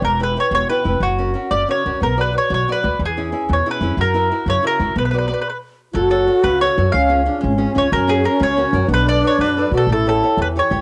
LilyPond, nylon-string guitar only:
\new Staff \with { instrumentName = "Nylon-string guitar" } { \time 6/8 \key b \minor \tempo 4. = 122 e8 <e' g' b'>8 <e' g' b'>8 b,8 <e' g' b'>8 <e' g' b'>8 | fis8 <cis' fis' ais'>8 <cis' fis' ais'>8 cis8 <cis' fis' ais'>8 <cis' fis' ais'>8 | b8 <fis' b' d''>8 <fis' b' d''>8 fis8 <fis' b' d''>8 <fis' b' d''>8 | e8 <cis' e' gis'>8 <cis' e' gis'>8 b,8 <cis' e' gis'>8 <cis' e' gis'>8 |
fis8 <e' fis' ais'>8 <e' fis' ais'>8 cis8 <e' fis' ais'>8 <e' fis' ais'>8 | b8 <fis' b' d''>8 <fis' b' d''>8 r4. | \key b \dorian fis8 <fis' a' cis''>8 <fis' a' cis''>8 cis8 <fis' a' cis''>8 <fis' a' cis''>8 | cis8 <cis' eis' gis'>8 <cis' eis' gis'>8 gis8 <cis' eis' gis'>8 <cis' eis' gis'>8 |
fis8 <cis' fis' ais'>8 <cis' fis' ais'>8 cis8 <cis' fis' ais'>8 <cis' fis' ais'>8 | b8 <a' b' d''>8 <a' b' d''>8 fis8 <a' b' d''>8 <a' b' d''>8 | a8 <g' a' cis''>8 <g' a' cis''>8 e8 <g' a' cis''>8 <g' a' cis''>8 | }